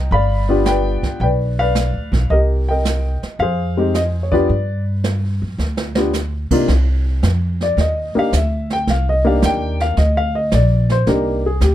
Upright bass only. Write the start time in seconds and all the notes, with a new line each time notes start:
0.11 G1
1.03 muted upright bass stroke
1.20 B1
1.93 D2
2.12 B1
2.30 C2
3.23 muted upright bass stroke
3.39 F2
4.49 G2
5.42 F#2
5.58 D2
6.51 muted upright bass stroke
6.68 C2
7.23 F2
7.77 D#2
8.15 muted upright bass stroke
8.32 D2
8.87 C2
9.42 D#2
9.97 D2
10.52 A#1
11.07 C2
11.61 D2